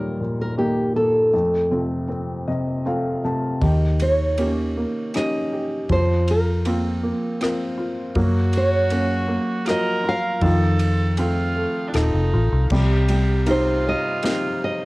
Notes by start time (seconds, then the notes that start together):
Already playing: D#2 A#2 D#3 G3 A#3 D#4 G4 A#4
0.21 A#2
0.41 A#4
0.57 D#3 A#3 D#4 G4
0.96 A#2 A#3 A4
1.33 F2 A3
1.70 C3 A3 C4 F4
2.08 C4
2.48 C3 D#5
2.85 A3 C4 F4 F5
3.23 C3 A3 A5
3.61 D#2 D#3 G4, kick, ride
4.00 C#5, ride
4.38 A#3 C#4 G4, ride
4.77 A#3
5.14 C#4 D#4 G4 D#5, cross-stick, ride
5.53 G4
5.89 F2 F3 F4 C5, kick, ride
6.28 A#4, ride
6.65 A#3 C4 F4, ride
7.03 A#3
7.41 C4 F4 A#4, cross-stick, ride
7.78 F4
8.15 F#2 F#3 A#3 F#4, kick, ride
8.53 ride
8.57 C#5
8.90 A#3 C#4, ride
9.28 A#3
9.66 F4 F#4 A#4, cross-stick, ride
9.70 D#5
10.04 F4
10.09 F5
10.41 F2 D#3 F3 F4 A4, kick, ride
10.79 ride
11.17 A3 C4 F4, ride
11.56 A3
11.88 D4
11.93 D#1 D#4 F4 A4, cross-stick, ride
12.14 F1
12.33 A1 F4
12.52 C2
12.70 C2 C3 G3 G4, kick, crash
13.09 G3, ride
13.46 C4 D#4 F4 G4, ride
13.51 C5
13.89 D#5
14.23 C4 D#4 G4, snare, ride
14.64 D#5